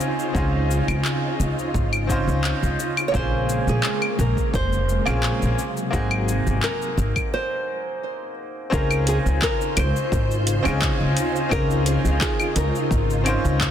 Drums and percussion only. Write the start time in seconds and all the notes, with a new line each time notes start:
0.01 cabasa
0.19 cabasa
0.35 kick, cabasa
0.71 cabasa
0.88 cabasa, claves
1.05 clap, cabasa
1.40 cabasa
1.59 cabasa
1.74 kick, cabasa
1.93 cabasa, claves
2.09 kick, cabasa
2.29 cabasa
2.44 clap, cabasa
2.63 cabasa
2.80 cabasa
2.97 cabasa, claves
3.14 kick, cabasa
3.49 cabasa
3.68 cabasa
3.83 clap, cabasa
4.02 claves
4.19 cabasa
4.37 kick, cabasa
4.54 kick, cabasa
4.73 cabasa
4.89 cabasa
5.06 cabasa, claves
5.23 clap, cabasa
5.42 cabasa
5.59 cabasa
5.77 cabasa
5.93 kick, cabasa
6.11 claves
6.28 cabasa
6.47 cabasa
6.63 clap, cabasa
6.82 cabasa
6.98 cabasa
7.16 kick, cabasa, claves
8.72 kick, cabasa
8.91 cabasa, claves
9.07 closed hi-hat, cabasa
9.26 cabasa
9.42 kick, clap, cabasa
9.61 cabasa
9.77 closed hi-hat, cabasa, claves
9.96 cabasa
10.12 kick, cabasa
10.31 cabasa
10.47 closed hi-hat, cabasa
10.65 cabasa, claves
10.82 kick, clap, cabasa
11.17 closed hi-hat, cabasa
11.36 cabasa
11.51 kick, cabasa, claves
11.71 cabasa
11.86 closed hi-hat, cabasa
12.05 cabasa
12.21 kick, clap, cabasa
12.40 cabasa, claves
12.56 closed hi-hat, cabasa
12.75 cabasa
12.91 kick, cabasa
13.10 cabasa
13.26 closed hi-hat, cabasa, claves
13.45 cabasa
13.61 kick, clap, cabasa